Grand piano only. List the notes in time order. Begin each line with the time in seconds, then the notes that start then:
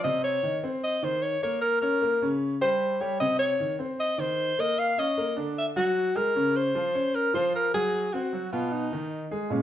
0.04 C3 C4
0.43 D#3 D#4
0.64 C4 C5
1.03 D#3 D#4
1.43 A#3 A#4
1.82 C#4 C#5
2.02 A#3 A#4
2.22 C#3 C#4
2.61 G3 G4
3.01 G3 G4
3.21 C3 C4
3.60 D#3 D#4
3.79 C4 C5
4.18 D#3 D#4
4.58 A#3 A#4
4.98 C#4 C#5
5.18 A#3 A#4
5.36 D3 D4
5.76 F#3 F#4
6.15 G#3 G#4
6.36 C#3 C#4
6.75 F3 F4
6.94 C#4 C#5
7.34 F3 F4
7.74 F#3 F#4
8.14 C4 C5
8.33 F#3 F#4
8.53 B2 B3
8.92 D#3 D#4
9.31 G#3 G#4
9.50 A#2 G#3 C#4